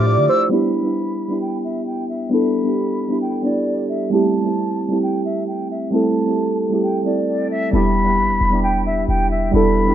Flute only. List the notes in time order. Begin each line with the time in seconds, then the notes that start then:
Already playing: D6
0.29 E6
0.52 B5
1.42 G5
1.64 E5
1.87 G5
2.09 E5
2.32 B5
3.22 G5
3.45 D5
3.89 E5
4.12 A5
5.03 G5
5.25 E5
5.47 G5
5.71 E5
5.93 A5
6.83 G5
7.05 D5
7.51 E5
7.74 B5
8.63 G5
8.86 E5
9.08 G5
9.31 E5
9.54 B5